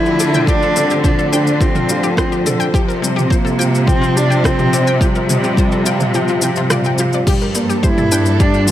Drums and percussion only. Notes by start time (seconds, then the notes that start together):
0.06 shaker
0.19 shaker
0.34 mid tom, shaker
0.47 kick, shaker
0.62 shaker
0.76 shaker
0.90 shaker
1.04 kick, mid tom, shaker
1.19 shaker
1.33 shaker
1.47 shaker
1.61 kick, shaker
1.75 mid tom, shaker
1.89 shaker
2.03 shaker
2.17 kick, cross-stick, shaker
2.32 shaker
2.46 mid tom, shaker
2.61 shaker
2.74 kick, shaker
2.90 shaker
3.04 shaker
3.19 mid tom, shaker
3.31 kick, shaker
3.47 shaker
3.61 shaker
3.75 shaker
3.88 kick, mid tom, shaker
4.03 shaker
4.17 shaker
4.32 shaker
4.44 kick, cross-stick, shaker
4.59 mid tom, shaker
4.73 shaker
4.87 shaker
5.01 kick, shaker
5.15 shaker
5.29 mid tom, shaker
5.44 shaker
5.57 kick, shaker
5.72 shaker
5.86 shaker
6.00 mid tom, shaker
6.14 shaker
6.28 shaker
6.42 shaker
6.56 shaker
6.70 cross-stick, mid tom, shaker
6.84 shaker
6.98 shaker
7.13 shaker
7.27 kick, mid tom, crash, shaker
7.41 shaker
7.55 shaker
7.70 shaker
7.83 kick, shaker
7.98 mid tom, shaker
8.12 shaker
8.26 shaker
8.40 kick, shaker
8.54 shaker
8.68 mid tom, shaker